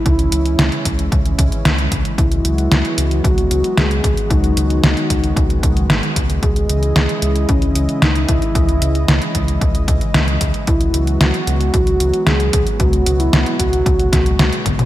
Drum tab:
HH |xxxxxxxxxxxxxxxx|xxxxxxxxxxxxxxxx|xxxxxxxxxxxxxxxx|xxxxxxxxxxxxxxxx|
SD |----o-------o---|----o-------o---|----o-------o---|----o-------o---|
T1 |----------------|----------------|----------------|----------------|
T2 |----------------|----------------|----------------|----------------|
BD |o-----o-o-o---o-|o-------o-----o-|o-----o-o-o---o-|o-------o-----o-|

HH |xxxxxxxxxxxxxxxx|xxxxxxxxxxxxxxxx|xxxxxxxxxxxxxxxx|
SD |----o-------o---|----o-------o---|----o-----o-o---|
T1 |----------------|----------------|--------------o-|
T2 |----------------|----------------|---------------o|
BD |o-----o-o-o---o-|o-------o-----o-|o-----o-o-o---o-|